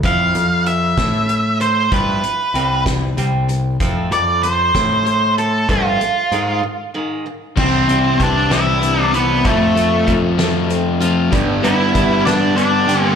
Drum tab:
CC |------|------|------|------|
HH |xxxxxx|xxxxxx|xxxxxx|xxx---|
SD |---o--|---o--|---o--|------|
BD |o--o--|o--o--|o--o--|o-----|

CC |x-----|------|------|
HH |-xxxxx|xxxxxx|xxxxxx|
SD |---o--|---o--|---o--|
BD |o-o---|o-o---|o-o---|